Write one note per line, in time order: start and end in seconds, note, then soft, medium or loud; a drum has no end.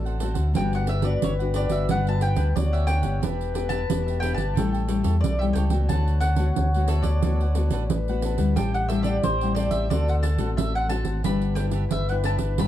0.00 0.32 A1 medium
0.00 0.53 A2 medium
0.00 0.15 A3 medium
0.00 0.16 C4 medium
0.00 0.16 F#4 medium
0.00 0.28 A4 loud
0.00 0.16 A5 loud
0.05 0.19 A4 soft
0.05 0.20 C5 soft
0.05 0.21 F#5 medium
0.05 pandeiro soft
0.20 0.50 A3 medium
0.20 0.50 C4 medium
0.20 0.36 D4 medium
0.20 0.50 F#4 medium
0.20 0.36 A4 medium
0.20 0.35 C5 medium
0.20 0.33 F#5 medium
0.20 pandeiro medium
0.34 0.52 D2 medium
0.34 0.53 A4 soft
0.34 0.53 C5 soft
0.34 0.52 F#5 medium
0.34 pandeiro medium
0.54 1.13 G1 loud
0.54 1.19 G3 medium
0.54 0.87 B3 medium
0.54 0.85 D4 medium
0.54 0.87 D4 medium
0.54 0.87 F#4 medium
0.54 0.86 G4 medium
0.54 0.87 B4 medium
0.54 2.58 B4 loud
0.54 0.88 F#5 medium
0.54 0.72 G5 loud
0.54 pandeiro medium
0.73 0.89 F#5 medium
0.73 pandeiro soft
0.86 1.01 D4 medium
0.86 1.01 G4 medium
0.86 1.01 B4 medium
0.86 1.04 E5 medium
0.86 1.02 F#5 medium
0.86 pandeiro medium
1.02 1.33 B3 medium
1.02 1.13 D4 medium
1.02 1.33 D4 medium
1.02 1.33 F#4 medium
1.02 1.13 G4 medium
1.02 1.13 B4 medium
1.02 1.21 D5 medium
1.02 1.13 F#5 medium
1.02 pandeiro medium
1.22 1.65 G1 loud
1.22 1.86 D3 medium
1.22 1.33 C#5 medium
1.22 pandeiro medium
1.39 1.68 B3 medium
1.39 1.68 D4 medium
1.39 1.68 F#4 medium
1.39 1.54 G4 soft
1.39 1.54 B4 soft
1.39 1.54 F#5 soft
1.39 pandeiro soft
1.54 1.87 D4 medium
1.54 1.87 G4 medium
1.54 1.88 B4 medium
1.54 1.73 D5 medium
1.54 1.88 F#5 medium
1.54 pandeiro medium
1.69 1.85 G1 medium
1.69 1.99 B3 medium
1.69 1.99 D4 medium
1.69 1.99 F#4 medium
1.69 1.89 E5 medium
1.69 pandeiro medium
1.88 2.32 G1 loud
1.88 2.53 G3 medium
1.88 2.04 D4 medium
1.88 2.05 G4 medium
1.88 2.05 B4 medium
1.88 2.06 F#5 medium
1.88 2.05 F#5 medium
1.88 pandeiro medium
2.06 2.52 B3 medium
2.06 2.52 D4 medium
2.06 2.52 F#4 medium
2.06 2.20 G4 soft
2.06 2.20 B4 soft
2.06 2.22 F#5 soft
2.06 2.22 A5 loud
2.06 pandeiro soft
2.20 2.34 D4 medium
2.20 2.35 G4 soft
2.20 2.35 B4 medium
2.20 2.36 F#5 medium
2.20 2.57 G5 loud
2.20 pandeiro medium
2.36 2.52 D2 medium
2.36 2.46 D4 medium
2.36 2.47 G4 medium
2.36 2.47 B4 medium
2.36 2.47 F#5 medium
2.36 pandeiro medium
2.56 2.99 D2 medium
2.56 3.20 D3 medium
2.56 3.02 B3 medium
2.56 3.02 D4 medium
2.56 3.02 F#4 medium
2.56 3.25 C#5 loud
2.56 2.73 D5 loud
2.56 pandeiro medium
2.72 2.86 G4 soft
2.72 2.87 B4 soft
2.72 2.86 E5 medium
2.72 2.88 F#5 soft
2.72 pandeiro soft
2.87 3.04 D4 medium
2.87 3.03 G4 medium
2.87 3.02 B4 medium
2.87 3.01 F#5 medium
2.87 3.68 G5 loud
2.87 pandeiro medium
3.02 3.19 G1 medium
3.02 3.54 B3 medium
3.02 3.54 D4 medium
3.02 3.21 G4 soft
3.02 3.55 G4 medium
3.02 3.20 B4 soft
3.02 3.20 F#5 medium
3.02 pandeiro medium
3.22 3.80 E1 medium
3.22 3.87 E3 medium
3.22 3.53 D4 medium
3.22 3.53 G4 medium
3.22 4.59 B4 loud
3.22 3.54 B4 medium
3.22 3.55 E5 medium
3.22 pandeiro medium
3.41 pandeiro soft
3.54 3.67 B3 medium
3.54 3.69 D4 medium
3.54 3.67 D4 medium
3.54 3.69 G4 medium
3.54 3.68 G4 medium
3.54 3.69 B4 medium
3.54 3.70 E5 medium
3.54 pandeiro medium
3.69 3.83 B3 medium
3.69 3.80 D4 medium
3.69 3.83 D4 medium
3.69 3.81 G4 medium
3.69 3.83 G4 medium
3.69 3.81 B4 medium
3.69 3.81 E5 medium
3.69 4.18 A5 loud
3.69 pandeiro medium
3.89 4.33 E1 medium
3.89 4.53 B2 medium
3.89 4.18 B3 soft
3.89 4.18 D4 medium
3.89 4.18 G4 medium
3.89 pandeiro medium
4.07 4.20 G4 soft
4.07 4.21 B4 soft
4.07 4.21 E5 soft
4.07 pandeiro soft
4.20 4.44 B3 medium
4.20 4.54 D4 medium
4.20 4.44 D4 medium
4.20 4.54 G4 medium
4.20 4.44 G4 medium
4.20 4.55 B4 medium
4.20 4.55 E5 medium
4.20 4.34 G5 medium
4.20 pandeiro medium
4.34 4.53 G1 medium
4.34 5.24 A5 medium
4.34 pandeiro medium
4.55 5.00 A1 loud
4.55 5.21 A2 medium
4.55 4.85 G3 medium
4.55 4.85 C#4 medium
4.55 4.72 E4 medium
4.55 4.86 E4 medium
4.55 4.72 A4 medium
4.55 5.57 A4 medium
4.55 4.72 C#5 medium
4.55 4.71 G5 medium
4.55 pandeiro medium
4.72 4.88 A4 soft
4.72 4.88 C#5 soft
4.72 4.88 G5 medium
4.72 pandeiro soft
4.88 5.34 G3 medium
4.88 5.34 C#4 medium
4.88 5.02 E4 soft
4.88 5.35 E4 medium
4.88 5.03 A4 soft
4.88 5.03 C#5 medium
4.88 5.04 G5 medium
4.88 pandeiro medium
5.03 5.20 E2 medium
5.03 5.14 E4 medium
5.03 5.15 A4 medium
5.03 5.15 C#5 medium
5.03 5.15 G5 medium
5.03 pandeiro medium
5.21 5.54 B1 medium
5.21 5.38 D5 medium
5.21 pandeiro medium
5.25 5.88 E3 medium
5.39 5.69 G3 medium
5.39 5.69 C#4 medium
5.39 5.70 E4 medium
5.39 5.56 C#5 soft
5.39 5.44 E5 medium
5.39 5.56 G5 medium
5.39 pandeiro soft
5.44 5.55 A4 soft
5.53 5.86 C#2 medium
5.53 5.72 E4 medium
5.53 5.72 A4 medium
5.53 5.71 C#5 medium
5.53 5.63 G5 medium
5.53 pandeiro medium
5.58 5.69 G5 medium
5.70 6.18 A3 medium
5.70 6.18 B3 medium
5.70 6.18 F#4 medium
5.70 5.89 A4 soft
5.70 5.88 C#5 soft
5.70 5.88 G5 soft
5.70 pandeiro medium
5.84 5.92 D5 medium
5.89 6.47 D2 medium
5.89 6.55 D3 medium
5.89 6.21 D4 medium
5.89 6.22 A4 medium
5.89 6.23 B4 medium
5.89 7.84 C#5 loud
5.89 6.23 F#5 medium
5.89 6.20 A5 loud
5.89 pandeiro medium
6.08 pandeiro soft
6.20 6.36 D4 medium
6.20 6.37 A4 medium
6.20 6.37 B4 medium
6.20 6.88 F#5 loud
6.20 6.38 F#5 medium
6.20 pandeiro medium
6.36 6.68 A3 medium
6.36 6.68 B3 medium
6.36 6.48 D4 medium
6.36 6.68 F#4 medium
6.36 6.49 A4 medium
6.36 6.49 B4 medium
6.36 6.49 F#5 medium
6.36 pandeiro medium
6.56 7.00 D2 medium
6.56 7.21 A2 medium
6.56 pandeiro medium
6.74 7.20 A3 medium
6.74 7.20 B3 medium
6.74 7.20 F#4 medium
6.74 6.88 A4 soft
6.74 6.89 B4 soft
6.74 6.89 F#5 soft
6.74 pandeiro soft
6.88 7.22 D4 medium
6.88 7.22 A4 medium
6.88 7.23 B4 medium
6.88 7.05 E5 medium
6.88 7.23 F#5 medium
6.88 pandeiro medium
7.02 7.20 D2 medium
7.02 8.18 D5 medium
7.02 pandeiro medium
7.22 7.67 D2 loud
7.22 7.89 D3 medium
7.22 7.44 A3 medium
7.22 7.45 B3 medium
7.22 7.40 D4 medium
7.22 7.45 F#4 medium
7.22 7.40 A4 medium
7.22 7.40 B4 medium
7.22 7.41 F#5 medium
7.22 pandeiro medium
7.41 7.56 A4 soft
7.41 7.56 B4 soft
7.41 7.57 F#5 soft
7.41 pandeiro soft
7.55 7.88 A3 medium
7.55 7.89 B3 medium
7.55 7.70 D4 soft
7.55 7.89 F#4 medium
7.55 7.71 A4 medium
7.55 7.72 B4 medium
7.55 7.72 F#5 medium
7.55 pandeiro medium
7.71 7.87 A1 medium
7.71 7.82 D4 medium
7.71 7.82 A4 medium
7.71 7.83 B4 medium
7.71 7.83 F#5 medium
7.71 pandeiro medium
7.84 7.92 C#5 medium
7.90 8.34 A1 medium
7.90 8.55 A2 medium
7.90 8.58 B4 loud
7.90 pandeiro medium
8.08 8.37 A3 medium
8.08 8.37 B3 medium
8.08 8.37 F#4 medium
8.08 8.24 A4 soft
8.08 8.24 B4 soft
8.08 8.24 F#5 soft
8.08 pandeiro soft
8.22 8.40 D4 medium
8.22 8.39 A4 medium
8.22 8.38 B4 medium
8.22 8.37 F#5 medium
8.22 pandeiro medium
8.38 8.54 D2 medium
8.38 8.89 G3 medium
8.38 8.89 C4 medium
8.38 8.90 E4 medium
8.38 8.56 A4 soft
8.38 8.56 B4 soft
8.38 8.55 F#5 soft
8.38 pandeiro medium
8.56 9.15 A1 medium
8.56 9.22 A2 medium
8.56 9.91 G4 loud
8.56 8.88 A4 medium
8.56 8.90 C5 medium
8.56 8.90 E5 medium
8.56 8.74 G5 loud
8.56 8.91 G5 medium
8.56 pandeiro medium
8.74 8.88 F#5 medium
8.74 pandeiro soft
8.88 9.22 G3 medium
8.88 9.23 C4 medium
8.88 9.23 E4 medium
8.88 9.04 A4 medium
8.88 9.05 C5 medium
8.88 9.01 E5 medium
8.88 9.05 E5 medium
8.88 9.06 G5 medium
8.88 pandeiro medium
9.02 9.16 A4 medium
9.02 9.16 C5 medium
9.02 9.21 D5 medium
9.02 9.08 E5 medium
9.02 pandeiro medium
9.07 9.16 E5 medium
9.07 9.17 G5 medium
9.23 9.68 A1 medium
9.23 9.54 C5 medium
9.23 pandeiro medium
9.41 9.87 G3 medium
9.41 9.88 C4 medium
9.41 9.88 E4 medium
9.41 9.57 C5 soft
9.41 9.58 E5 soft
9.41 9.58 G5 medium
9.41 pandeiro soft
9.55 9.90 A4 medium
9.55 9.90 C5 medium
9.55 9.72 D5 medium
9.55 pandeiro medium
9.59 9.91 E5 medium
9.59 9.91 G5 medium
9.71 9.88 A1 medium
9.71 9.88 E5 medium
9.71 pandeiro medium
9.90 10.34 D2 loud
9.90 10.56 D3 medium
9.90 10.24 A3 medium
9.90 10.24 C4 medium
9.90 10.07 D4 medium
9.90 10.24 F#4 medium
9.90 10.95 A4 loud
9.90 10.07 A4 medium
9.90 10.08 C5 medium
9.90 10.07 D5 loud
9.90 10.08 F#5 medium
9.90 pandeiro medium
10.08 10.23 A4 soft
10.08 10.24 C5 medium
10.08 10.14 F#5 loud
10.08 10.24 F#5 soft
10.08 pandeiro soft
10.23 10.37 D4 medium
10.23 10.38 A4 medium
10.23 10.38 C5 medium
10.23 10.39 F#5 medium
10.23 10.57 A5 loud
10.23 pandeiro medium
10.38 10.54 A1 medium
10.38 10.86 A3 medium
10.38 10.86 C4 medium
10.38 10.49 D4 medium
10.38 10.86 F#4 medium
10.38 10.50 A4 medium
10.38 10.50 C5 medium
10.38 10.50 F#5 medium
10.38 pandeiro medium
10.57 11.01 A1 medium
10.57 11.22 A2 medium
10.57 10.75 E5 medium
10.57 pandeiro medium
10.75 10.90 A4 soft
10.75 10.91 C5 soft
10.75 10.89 F#5 medium
10.75 10.91 F#5 soft
10.75 pandeiro soft
10.89 11.19 A3 medium
10.89 11.20 C4 medium
10.89 11.07 D4 medium
10.89 11.20 F#4 medium
10.89 11.06 A4 medium
10.89 11.05 C5 medium
10.89 11.04 F#5 medium
10.89 11.24 A5 loud
10.89 pandeiro medium
11.05 11.21 G#1 medium
11.05 11.24 A4 soft
11.05 11.23 C5 soft
11.05 11.22 F#5 medium
11.05 pandeiro medium
11.24 11.82 G1 medium
11.24 11.89 G3 medium
11.24 11.55 D4 medium
11.24 11.45 D4 medium
11.24 11.45 E4 medium
11.24 11.56 G4 medium
11.24 11.57 B4 medium
11.24 12.68 B4 loud
11.24 11.46 B4 medium
11.24 11.58 E5 medium
11.24 11.55 B5 loud
11.24 pandeiro medium
11.42 pandeiro soft
11.55 11.71 D4 medium
11.55 11.90 D4 medium
11.55 11.72 G4 medium
11.55 11.72 B4 medium
11.55 11.91 B4 medium
11.55 11.72 E5 medium
11.55 11.65 G5 medium
11.55 pandeiro medium
11.60 11.91 E4 medium
11.71 11.83 D4 medium
11.71 11.83 G4 medium
11.71 11.84 B4 medium
11.71 11.84 E5 medium
11.71 pandeiro medium
11.91 12.35 G1 medium
11.91 12.57 D3 medium
11.91 12.09 E5 medium
11.91 pandeiro medium
12.09 12.55 D4 medium
12.09 12.55 E4 medium
12.09 12.24 G4 soft
12.09 12.25 B4 soft
12.09 12.55 B4 medium
12.09 12.25 E5 soft
12.09 12.14 F#5 medium
12.09 pandeiro soft
12.24 12.57 D4 medium
12.24 12.58 G4 medium
12.24 12.58 B4 medium
12.24 12.58 E5 medium
12.24 12.34 A5 loud
12.24 pandeiro medium
12.38 12.55 G1 medium
12.38 pandeiro medium
12.58 12.68 G1 loud
12.58 12.68 G3 medium
12.58 12.68 D4 medium
12.58 12.68 E4 medium
12.58 12.68 G4 medium
12.58 12.68 B4 medium
12.58 12.68 E5 medium
12.58 12.68 B5 loud
12.58 pandeiro medium